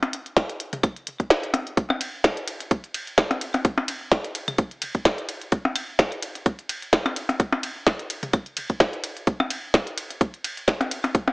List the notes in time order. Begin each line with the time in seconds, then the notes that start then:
0.03 closed hi-hat, percussion blips
0.13 closed hi-hat
0.26 closed hi-hat
0.37 kick, snare, closed hi-hat
0.50 closed hi-hat
0.60 closed hi-hat
0.73 closed hi-hat, mid tom
0.83 kick, closed hi-hat, claves
0.96 closed hi-hat
1.07 closed hi-hat
1.20 kick, closed hi-hat
1.30 snare, closed hi-hat
1.43 closed hi-hat
1.54 closed hi-hat, percussion blips
1.67 closed hi-hat
1.77 kick, closed hi-hat
1.90 percussion blips, claves
2.01 closed hi-hat, ride
2.24 kick, snare, closed hi-hat
2.37 closed hi-hat
2.48 closed hi-hat, ride
2.60 closed hi-hat
2.71 kick, closed hi-hat
2.84 closed hi-hat
2.94 closed hi-hat, ride
3.07 closed hi-hat
3.18 kick, snare, closed hi-hat, claves
3.31 closed hi-hat, percussion blips
3.41 closed hi-hat, ride
3.54 closed hi-hat, percussion blips
3.65 kick, closed hi-hat
3.78 percussion blips
3.88 closed hi-hat, ride
4.12 kick, snare, closed hi-hat
4.25 closed hi-hat
4.35 closed hi-hat, ride
4.48 closed hi-hat, mid tom, claves
4.58 kick, closed hi-hat
4.71 closed hi-hat
4.82 closed hi-hat, ride
4.95 kick, closed hi-hat
5.05 kick, snare, closed hi-hat
5.18 closed hi-hat
5.29 closed hi-hat, ride
5.42 closed hi-hat
5.52 kick, closed hi-hat
5.65 percussion blips
5.76 closed hi-hat, ride, claves
5.99 kick, snare, closed hi-hat
6.12 closed hi-hat
6.22 closed hi-hat, ride
6.35 closed hi-hat
6.46 kick, closed hi-hat
6.59 closed hi-hat
6.69 closed hi-hat, ride
6.82 closed hi-hat
6.93 kick, snare, closed hi-hat
7.06 closed hi-hat, percussion blips, claves
7.16 closed hi-hat, ride
7.29 closed hi-hat, percussion blips
7.40 kick, closed hi-hat
7.53 percussion blips
7.63 closed hi-hat, ride
7.87 kick, snare, closed hi-hat
7.99 closed hi-hat
8.10 closed hi-hat, ride
8.23 closed hi-hat, mid tom
8.33 kick, closed hi-hat, claves
8.46 closed hi-hat
8.57 closed hi-hat, ride
8.70 kick, closed hi-hat
8.80 kick, snare, closed hi-hat
8.93 closed hi-hat
9.04 closed hi-hat, ride
9.17 closed hi-hat
9.27 kick, closed hi-hat
9.40 percussion blips, claves
9.50 closed hi-hat, ride
9.74 kick, snare, closed hi-hat
9.87 closed hi-hat
9.98 closed hi-hat, ride
10.11 closed hi-hat
10.21 kick, closed hi-hat
10.34 closed hi-hat
10.44 closed hi-hat, ride
10.57 closed hi-hat
10.68 kick, snare, closed hi-hat, claves
10.81 closed hi-hat, percussion blips
10.91 closed hi-hat, ride
11.04 closed hi-hat, percussion blips
11.15 kick, closed hi-hat
11.28 percussion blips